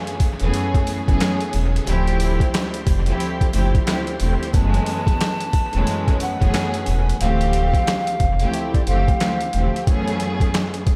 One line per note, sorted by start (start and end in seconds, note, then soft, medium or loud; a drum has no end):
0.00 0.14 F#2 loud
0.00 0.14 E3 loud
0.00 0.14 A3 loud
0.00 1.85 A3 medium
0.00 0.15 B3 loud
0.00 0.15 C#4 medium
0.00 0.15 G#4 loud
0.00 1.85 G#4 medium
0.00 1.85 B4 medium
0.07 closed hi-hat medium
0.20 kick medium
0.20 closed hi-hat medium
0.20 sleigh bells medium
0.40 0.51 E1 medium
0.40 1.00 F#2 medium
0.40 1.01 E3 loud
0.40 1.01 A3 medium
0.40 1.01 B3 medium
0.40 1.02 C#4 medium
0.40 1.02 G#4 loud
0.40 closed hi-hat medium
0.53 closed hi-hat medium
0.53 sleigh bells medium
0.74 kick medium
0.74 closed hi-hat medium
0.87 closed hi-hat medium
0.87 sleigh bells medium
1.04 1.18 F#1 medium
1.04 1.66 F#2 loud
1.04 1.66 E3 loud
1.04 1.67 A3 loud
1.04 1.67 B3 medium
1.04 1.67 C#4 medium
1.04 1.68 G#4 loud
1.04 kick medium
1.08 closed hi-hat medium
1.20 snare loud
1.20 clap medium
1.20 closed hi-hat medium
1.20 sleigh bells medium
1.40 closed hi-hat medium
1.53 1.80 E1 medium
1.53 closed hi-hat medium
1.53 sleigh bells medium
1.76 closed hi-hat medium
1.85 2.39 D1 loud
1.85 2.80 D2 loud
1.85 2.80 F3 medium
1.85 4.51 F3 medium
1.85 4.51 G3 medium
1.85 2.81 A3 loud
1.85 2.81 C4 loud
1.85 2.81 E4 loud
1.85 2.82 G4 loud
1.85 4.51 C5 medium
1.85 closed hi-hat medium
1.85 sleigh bells soft
2.07 closed hi-hat medium
2.20 closed hi-hat medium
2.20 sleigh bells medium
2.40 kick medium
2.40 closed hi-hat medium
2.54 snare loud
2.54 clap medium
2.54 closed hi-hat loud
2.54 sleigh bells medium
2.74 closed hi-hat medium
2.87 3.13 F1 loud
2.87 kick medium
2.87 closed hi-hat medium
2.87 sleigh bells medium
3.06 3.50 D2 medium
3.06 3.51 F3 medium
3.06 3.51 A3 medium
3.06 3.51 C4 medium
3.06 3.51 E4 medium
3.06 3.52 G4 loud
3.06 closed hi-hat medium
3.20 closed hi-hat medium
3.20 sleigh bells medium
3.41 kick medium
3.41 closed hi-hat medium
3.52 3.80 F#1 medium
3.52 3.84 D2 medium
3.52 3.84 F3 medium
3.52 3.85 A3 medium
3.52 3.85 C4 medium
3.52 3.85 E4 medium
3.52 3.86 G4 loud
3.52 closed hi-hat medium
3.52 sleigh bells medium
3.75 kick medium
3.75 closed hi-hat medium
3.86 4.18 D2 medium
3.86 4.18 F3 medium
3.86 4.19 A3 medium
3.86 4.19 C4 medium
3.86 4.19 E4 medium
3.86 4.19 G4 medium
3.86 snare loud
3.86 clap medium
3.86 closed hi-hat medium
3.86 sleigh bells medium
4.07 closed hi-hat medium
4.19 4.36 E1 loud
4.19 4.51 D2 medium
4.19 4.51 F3 medium
4.19 4.52 A3 medium
4.19 4.52 C4 medium
4.19 4.52 E4 medium
4.19 4.53 G4 medium
4.19 closed hi-hat medium
4.19 sleigh bells medium
4.43 closed hi-hat medium
4.52 4.80 F#1 loud
4.52 5.47 F#2 loud
4.52 5.47 E3 medium
4.52 5.48 G#3 loud
4.52 5.48 A3 loud
4.52 7.17 B3 medium
4.52 5.48 B3 loud
4.52 5.48 C#4 medium
4.52 7.17 F#4 medium
4.52 7.17 B4 medium
4.52 6.17 A5 loud
4.52 kick loud
4.52 closed hi-hat medium
4.52 sleigh bells soft
4.74 closed hi-hat soft
4.86 closed hi-hat medium
4.86 sleigh bells medium
5.07 kick medium
5.07 closed hi-hat medium
5.21 snare loud
5.21 clap medium
5.21 closed hi-hat medium
5.21 sleigh bells medium
5.40 closed hi-hat medium
5.53 kick medium
5.53 closed hi-hat medium
5.53 sleigh bells medium
5.73 5.84 E1 medium
5.73 6.34 F#2 medium
5.73 6.34 E3 medium
5.73 6.35 G#3 loud
5.73 6.34 A3 medium
5.73 6.35 B3 medium
5.73 6.35 C#4 medium
5.73 closed hi-hat soft
5.87 closed hi-hat medium
5.87 sleigh bells medium
6.08 kick medium
6.08 closed hi-hat medium
6.20 6.72 F#5 medium
6.20 closed hi-hat medium
6.20 sleigh bells medium
6.38 6.51 F#1 medium
6.38 7.00 F#2 loud
6.38 7.00 E3 medium
6.38 7.00 A3 loud
6.38 7.00 B3 medium
6.38 7.01 C#4 medium
6.38 7.01 G#4 loud
6.38 kick medium
6.38 closed hi-hat medium
6.54 snare loud
6.54 clap medium
6.54 closed hi-hat medium
6.54 sleigh bells medium
6.74 closed hi-hat medium
6.86 7.13 E1 medium
6.86 closed hi-hat medium
6.86 sleigh bells medium
7.09 closed hi-hat medium
7.19 7.72 D1 loud
7.19 8.13 D2 loud
7.19 8.15 E3 loud
7.19 8.14 F3 medium
7.19 8.14 A3 loud
7.19 8.14 C4 loud
7.19 8.15 G4 loud
7.19 8.50 F5 loud
7.19 closed hi-hat medium
7.41 closed hi-hat medium
7.53 closed hi-hat medium
7.74 kick medium
7.74 closed hi-hat medium
7.87 snare loud
7.87 clap loud
7.87 closed hi-hat loud
8.07 closed hi-hat medium
8.20 8.46 F1 medium
8.20 kick medium
8.20 closed hi-hat medium
8.39 8.84 D2 medium
8.39 8.84 F3 medium
8.39 8.84 A3 medium
8.39 8.84 C4 medium
8.39 8.85 E4 medium
8.39 8.85 G4 loud
8.39 closed hi-hat soft
8.54 8.72 E5 medium
8.54 closed hi-hat medium
8.73 8.85 D5 medium
8.73 kick medium
8.73 closed hi-hat medium
8.85 9.13 F#1 medium
8.85 9.17 D2 medium
8.85 9.19 E3 medium
8.85 9.18 F3 medium
8.85 9.18 A3 medium
8.85 9.18 C4 medium
8.85 9.19 G4 loud
8.85 9.83 F5 medium
8.85 closed hi-hat medium
9.08 kick medium
9.08 closed hi-hat medium
9.19 9.51 D2 medium
9.19 9.52 E3 medium
9.19 9.52 F3 medium
9.19 9.52 A3 medium
9.19 9.52 C4 medium
9.19 9.53 G4 medium
9.19 snare loud
9.19 clap medium
9.19 closed hi-hat medium
9.41 closed hi-hat medium
9.53 9.70 E1 loud
9.53 9.85 D2 medium
9.53 9.85 E3 medium
9.53 9.85 F3 medium
9.53 9.85 A3 medium
9.53 9.85 C4 medium
9.53 9.86 G4 medium
9.53 closed hi-hat medium
9.76 closed hi-hat medium
9.86 10.80 F#2 loud
9.86 10.81 E3 medium
9.86 10.81 A3 loud
9.86 10.81 B3 loud
9.86 10.82 C#4 medium
9.86 10.82 G#4 loud
9.86 kick loud
9.86 closed hi-hat medium
10.08 closed hi-hat soft
10.20 closed hi-hat medium
10.40 kick medium
10.40 closed hi-hat medium
10.54 snare loud
10.54 clap medium
10.54 closed hi-hat medium
10.74 closed hi-hat medium
10.87 kick medium
10.87 closed hi-hat medium